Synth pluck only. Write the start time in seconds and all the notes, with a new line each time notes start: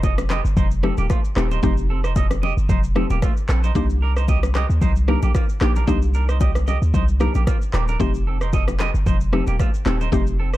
0.83 A3 C4 D#4 G4
1.36 A3 C4 D#4 G4
1.63 A3 C4 D#4 G4
2.95 A3 C4 D#4 G4
3.75 A#3 D4 D#4 G4
5.08 A#3 D4 D#4 G4
5.61 A#3 D4 D#4 G4
5.87 A#3 D4 D#4 G4
7.20 A#3 D4 D#4 G4
8.00 A3 C4 D#4 G4
9.33 A3 C4 D#4 G4
9.86 A3 C4 D#4 G4
10.12 A3 C4 D#4 G4